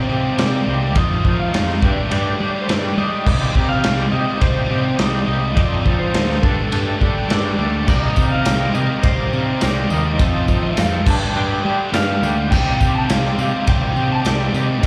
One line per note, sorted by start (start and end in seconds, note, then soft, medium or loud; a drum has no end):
0.00 0.39 C5 loud
0.08 0.36 C3 loud
0.08 0.32 C3 loud
0.08 0.37 D#3 medium
0.08 0.37 G3 medium
0.08 0.38 A#3 medium
0.08 0.37 C4 loud
0.08 0.38 G4 loud
0.37 0.66 C3 medium
0.37 0.60 C3 loud
0.37 0.66 D#3 loud
0.37 0.66 G3 loud
0.37 0.67 A#3 loud
0.37 0.66 C4 loud
0.37 0.67 G4 loud
0.37 0.96 D5 loud
0.37 snare loud
0.37 ride bell medium
0.67 0.96 C2 medium
0.67 0.94 C3 medium
0.67 0.94 D#3 medium
0.67 0.94 G3 loud
0.67 0.94 A#3 loud
0.67 0.94 C4 medium
0.67 0.94 G4 loud
0.95 1.22 F2 loud
0.95 1.18 F2 loud
0.95 1.23 C3 loud
0.95 1.23 D#3 loud
0.95 1.23 A3 loud
0.95 1.23 D#4 loud
0.95 1.24 F4 loud
0.95 1.39 D#5 loud
0.95 kick loud
0.95 ride bell medium
1.23 1.51 F2 medium
1.23 1.51 C3 medium
1.23 1.51 D#3 medium
1.23 1.47 F3 medium
1.23 1.52 A3 medium
1.23 1.52 D#4 medium
1.23 1.52 F4 medium
1.23 kick medium
1.40 1.83 F5 medium
1.52 1.80 F2 loud
1.52 1.76 F2 medium
1.52 1.80 C3 loud
1.52 1.80 D#3 loud
1.52 1.80 A3 loud
1.52 1.80 D#4 loud
1.52 1.80 F4 loud
1.52 snare loud
1.52 ride bell medium
1.70 snare soft
1.81 1.93 G2 medium
1.81 2.09 G3 loud
1.81 2.09 A3 loud
1.81 2.10 D4 loud
1.81 2.10 G4 loud
1.81 2.11 D5 medium
1.81 kick loud
2.10 2.34 G2 loud
2.10 2.39 G3 loud
2.10 2.39 A3 loud
2.10 2.39 D4 loud
2.10 2.40 G4 loud
2.10 2.38 D5 medium
2.10 ride bell medium
2.40 2.67 G3 loud
2.40 2.62 G3 loud
2.40 2.67 A3 loud
2.40 2.67 D4 loud
2.40 2.68 G4 loud
2.40 2.63 D5 medium
2.62 2.68 C5 medium
2.68 2.91 G2 loud
2.68 2.96 G3 medium
2.68 2.96 A3 medium
2.68 2.96 D4 medium
2.68 2.97 G4 medium
2.68 2.98 D5 loud
2.68 snare loud
2.68 ride bell medium
2.97 3.24 G3 loud
2.97 3.28 G3 medium
2.97 3.24 A3 medium
2.97 3.25 D4 loud
2.97 3.25 G4 loud
2.97 3.68 D#5 loud
3.26 3.49 C2 loud
3.26 3.53 C3 loud
3.26 3.54 D#3 loud
3.26 3.54 G3 loud
3.26 3.55 A#3 loud
3.26 3.54 C4 loud
3.26 3.55 D#4 loud
3.26 3.55 G4 loud
3.26 kick loud
3.26 crash loud
3.55 3.83 C3 medium
3.55 3.78 C3 medium
3.55 3.83 D#3 medium
3.55 3.83 G3 medium
3.55 3.83 A#3 medium
3.55 3.84 C4 medium
3.55 3.84 D#4 medium
3.55 3.84 G4 loud
3.55 kick medium
3.69 4.09 F5 loud
3.84 4.07 C2 loud
3.84 4.10 C3 loud
3.84 4.11 D#3 loud
3.84 4.11 G3 loud
3.84 4.12 A#3 loud
3.84 4.11 C4 loud
3.84 4.12 D#4 loud
3.84 4.12 G4 loud
3.84 snare loud
3.84 ride bell medium
4.11 4.39 C3 medium
4.11 4.24 C3 medium
4.11 4.40 D#3 medium
4.11 4.40 G3 loud
4.11 4.41 A#3 loud
4.11 4.40 C4 medium
4.11 4.41 D#4 loud
4.11 4.41 G4 loud
4.11 4.39 D#5 loud
4.40 4.64 C2 loud
4.40 4.68 C3 loud
4.40 4.68 D#3 loud
4.40 4.68 G3 loud
4.40 4.69 A#3 loud
4.40 4.69 C4 loud
4.40 4.70 D#4 loud
4.40 4.69 G4 loud
4.40 5.01 C5 medium
4.40 kick loud
4.40 ride bell medium
4.69 4.96 C3 medium
4.69 4.93 C3 loud
4.69 4.97 D#3 loud
4.69 4.97 G3 medium
4.69 4.98 A#3 medium
4.69 4.97 C4 loud
4.69 4.99 D#4 loud
4.69 4.97 G4 loud
4.97 5.21 C2 medium
4.97 5.26 C3 medium
4.97 5.26 D#3 loud
4.97 5.26 G3 medium
4.97 5.28 A#3 loud
4.97 5.27 C4 loud
4.97 5.28 D#4 loud
4.97 5.27 G4 loud
4.97 5.26 D#5 loud
4.97 snare loud
4.97 ride bell medium
5.27 5.57 C2 medium
5.27 5.54 C3 medium
5.27 5.54 D#3 medium
5.27 5.55 G3 medium
5.27 5.56 A#3 loud
5.27 5.55 C4 loud
5.27 5.56 D#4 loud
5.27 5.55 G4 loud
5.27 5.55 D#5 loud
5.55 5.83 F2 loud
5.55 5.80 F2 loud
5.55 5.83 C3 loud
5.55 5.83 D#3 loud
5.55 5.85 F3 loud
5.55 5.84 A3 loud
5.55 5.85 C4 loud
5.55 5.84 D#4 loud
5.55 5.85 F4 loud
5.55 5.86 A4 loud
5.55 6.01 D5 loud
5.55 kick loud
5.55 ride bell medium
5.84 6.12 F2 medium
5.84 6.13 C3 medium
5.84 6.13 D#3 medium
5.84 6.08 F3 medium
5.84 6.13 F3 medium
5.84 6.13 A3 loud
5.84 6.14 C4 loud
5.84 6.14 D#4 loud
5.84 6.14 F4 medium
5.84 6.15 A4 medium
5.84 kick medium
5.99 6.41 C5 medium
6.13 6.37 D2 medium
6.13 6.41 F2 loud
6.13 6.42 C3 loud
6.13 6.42 D#3 medium
6.13 6.42 F3 loud
6.13 6.42 A3 loud
6.13 6.42 C4 loud
6.13 6.42 D#4 loud
6.13 6.42 F4 loud
6.13 6.43 A4 loud
6.13 snare loud
6.13 ride bell medium
6.30 snare soft
6.42 6.55 G2 medium
6.42 6.70 G3 medium
6.42 6.71 A3 loud
6.42 6.71 D4 loud
6.42 6.72 G4 loud
6.42 7.32 A4 loud
6.42 6.72 A4 loud
6.42 kick loud
6.71 6.95 G2 loud
6.71 6.99 G3 loud
6.71 6.99 A3 loud
6.71 7.00 D4 loud
6.71 7.00 G4 loud
6.71 7.01 A4 loud
6.71 ride bell medium
7.00 7.27 G3 medium
7.00 7.24 G3 medium
7.00 7.28 A3 loud
7.00 7.28 D4 loud
7.00 7.29 G4 loud
7.00 7.30 A4 loud
7.00 kick medium
7.29 7.53 G2 loud
7.29 7.56 G3 medium
7.29 7.57 A3 medium
7.29 7.57 D4 medium
7.29 7.57 G4 medium
7.29 7.58 A4 loud
7.29 7.88 D5 loud
7.29 snare loud
7.29 ride bell medium
7.57 7.90 D2 medium
7.57 7.85 G3 medium
7.57 7.86 A3 medium
7.57 7.86 D4 loud
7.57 7.86 G4 loud
7.57 7.87 A4 loud
7.86 8.11 C2 loud
7.86 8.15 C3 loud
7.86 8.15 D#3 loud
7.86 8.15 G3 loud
7.86 8.16 A#3 loud
7.86 8.16 C4 loud
7.86 8.16 D#4 loud
7.86 8.16 G4 loud
7.86 8.17 A#4 loud
7.86 7.99 D5 loud
7.86 kick loud
7.86 crash loud
7.86 tambourine medium
7.99 8.31 D#5 loud
8.16 8.44 C3 medium
8.16 8.40 C3 loud
8.16 8.44 D#3 loud
8.16 8.44 G3 loud
8.16 8.45 A#3 medium
8.16 8.44 C4 medium
8.16 8.46 D#4 loud
8.16 8.45 G4 medium
8.16 8.46 A#4 loud
8.16 kick medium
8.16 tambourine medium
8.31 8.72 F5 medium
8.45 8.68 C2 loud
8.45 8.73 C3 loud
8.45 8.73 D#3 loud
8.45 8.73 G3 loud
8.45 8.73 A#3 loud
8.45 8.74 C4 loud
8.45 8.74 D#4 loud
8.45 8.74 G4 loud
8.45 8.75 A#4 loud
8.45 snare loud
8.45 ride bell medium
8.45 tambourine loud
8.74 9.02 C3 medium
8.74 8.86 C3 medium
8.74 9.02 D#3 medium
8.74 9.03 G3 medium
8.74 9.03 A#3 loud
8.74 9.03 C4 medium
8.74 9.04 D#4 loud
8.74 9.03 G4 loud
8.74 9.04 A#4 loud
8.74 9.02 D#5 medium
8.74 tambourine medium
9.03 9.27 C2 loud
9.03 9.31 C3 loud
9.03 9.32 D#3 loud
9.03 9.32 G3 loud
9.03 9.32 A#3 loud
9.03 9.32 C4 loud
9.03 9.33 D#4 loud
9.03 9.33 G4 loud
9.03 9.33 A#4 loud
9.03 9.63 C5 loud
9.03 kick loud
9.03 ride bell medium
9.33 9.60 C3 medium
9.33 9.56 C3 medium
9.33 9.60 D#3 medium
9.33 9.60 G3 loud
9.33 9.61 A#3 loud
9.33 9.61 C4 loud
9.33 9.62 D#4 loud
9.33 9.61 G4 loud
9.33 9.62 A#4 loud
9.33 tambourine soft
9.61 9.85 C2 loud
9.61 9.90 C3 medium
9.61 9.90 D#3 loud
9.61 9.90 G3 medium
9.61 9.91 A#3 loud
9.61 9.91 C4 medium
9.61 9.91 D#4 loud
9.61 9.91 G4 loud
9.61 9.92 A#4 loud
9.61 9.88 D5 loud
9.61 snare loud
9.61 ride bell medium
9.61 tambourine medium
9.90 10.20 D#2 medium
9.90 10.18 C3 medium
9.90 10.18 D#3 loud
9.90 10.18 G3 loud
9.90 10.18 A#3 loud
9.90 10.18 C4 medium
9.90 10.19 D#4 loud
9.90 10.19 G4 loud
9.90 10.19 A#4 loud
9.90 10.59 D#5 loud
9.90 tambourine medium
10.19 10.46 F2 loud
10.19 10.42 F2 loud
10.19 10.46 C3 loud
10.19 10.46 D#3 loud
10.19 10.48 F3 loud
10.19 10.47 A3 loud
10.19 10.48 C4 loud
10.19 10.47 D#4 loud
10.19 10.48 F4 loud
10.19 10.50 A4 loud
10.19 kick loud
10.19 ride bell medium
10.19 tambourine medium
10.47 10.75 F2 medium
10.47 10.76 C3 medium
10.47 10.76 D#3 medium
10.47 10.71 F3 medium
10.47 10.77 F3 medium
10.47 10.76 A3 medium
10.47 10.77 C4 medium
10.47 10.77 D#4 medium
10.47 10.76 F4 loud
10.47 10.78 A4 loud
10.47 kick medium
10.47 tambourine medium
10.63 11.03 F5 loud
10.76 11.04 F2 loud
10.76 11.01 F2 loud
10.76 11.04 C3 loud
10.76 11.05 D#3 loud
10.76 11.05 F3 loud
10.76 11.05 A3 loud
10.76 11.05 C4 loud
10.76 11.05 D#4 loud
10.76 11.05 F4 loud
10.76 11.06 A4 loud
10.76 snare loud
10.76 ride bell medium
10.76 tambourine loud
11.06 11.18 G2 loud
11.06 11.35 G3 medium
11.06 11.35 A3 loud
11.06 11.35 D4 loud
11.06 11.36 G4 loud
11.06 11.36 A5 loud
11.06 kick loud
11.06 tambourine medium
11.06 crash loud
11.36 11.58 G2 loud
11.36 11.64 G3 loud
11.36 11.64 A3 loud
11.36 11.64 D4 loud
11.36 11.65 G4 loud
11.36 11.93 G5 loud
11.65 11.87 G3 loud
11.65 11.92 G3 medium
11.65 11.92 A3 loud
11.65 11.92 D4 loud
11.65 11.93 G4 loud
11.93 12.16 G2 loud
11.93 12.21 G3 loud
11.93 12.21 A3 loud
11.93 12.21 D4 loud
11.93 12.22 G4 loud
11.93 12.48 F5 loud
11.93 snare loud
11.93 ride bell medium
11.93 tambourine medium
12.22 12.54 D2 loud
12.22 12.49 G3 loud
12.22 12.49 A3 medium
12.22 12.50 D4 loud
12.22 12.50 G4 loud
12.22 tambourine medium
12.51 12.75 C2 loud
12.51 12.80 C3 loud
12.51 12.80 D#3 loud
12.51 12.80 G3 loud
12.51 12.80 A#3 loud
12.51 12.81 C4 loud
12.51 12.81 G4 loud
12.51 12.95 G5 loud
12.51 kick loud
12.51 crash loud
12.51 tambourine medium
12.80 13.09 C3 medium
12.80 13.04 C3 medium
12.80 13.09 D#3 medium
12.80 13.09 G3 loud
12.80 13.09 A#3 medium
12.80 13.10 C4 medium
12.80 13.10 G4 medium
12.80 kick medium
12.80 tambourine medium
12.95 13.10 A5 loud
13.09 13.32 C2 loud
13.09 13.37 C3 loud
13.09 13.38 D#3 loud
13.09 13.38 G3 loud
13.09 13.39 A#3 loud
13.09 13.39 C4 loud
13.09 13.39 G4 loud
13.09 13.37 F5 loud
13.09 snare loud
13.09 ride bell medium
13.09 tambourine loud
13.25 snare soft
13.38 13.50 C3 loud
13.38 13.66 C3 medium
13.38 13.67 D#3 medium
13.38 13.67 G3 loud
13.38 13.67 A#3 loud
13.38 13.68 C4 loud
13.38 13.68 G4 loud
13.38 13.66 F5 medium
13.38 tambourine medium
13.67 13.90 C2 loud
13.67 13.96 C3 medium
13.67 13.97 D#3 medium
13.67 13.97 G3 loud
13.67 13.96 A#3 loud
13.67 13.98 C4 loud
13.67 13.98 G4 loud
13.67 14.08 G5 loud
13.67 kick loud
13.67 ride bell loud
13.96 14.19 C3 medium
13.96 14.24 C3 medium
13.96 14.25 D#3 medium
13.96 14.25 G3 loud
13.96 14.25 A#3 loud
13.96 14.26 C4 loud
13.96 14.26 G4 loud
13.96 tambourine soft
14.12 14.26 A5 loud
14.25 14.48 C2 medium
14.25 14.54 C3 medium
14.25 14.54 D#3 loud
14.25 14.54 G3 loud
14.25 14.53 A#3 loud
14.25 14.56 C4 loud
14.25 14.54 G4 medium
14.25 14.53 D5 loud
14.25 snare loud
14.25 ride bell medium
14.25 tambourine loud
14.54 14.84 C3 medium
14.54 14.82 C3 medium
14.54 14.82 D#3 medium
14.54 14.82 G3 loud
14.54 14.82 A#3 medium
14.54 14.84 C4 loud
14.54 14.82 G4 medium
14.54 14.87 D#5 loud
14.54 tambourine medium
14.83 14.87 F2 loud
14.83 14.87 C3 loud
14.83 14.87 D#3 loud
14.83 kick loud
14.83 ride bell medium
14.83 tambourine medium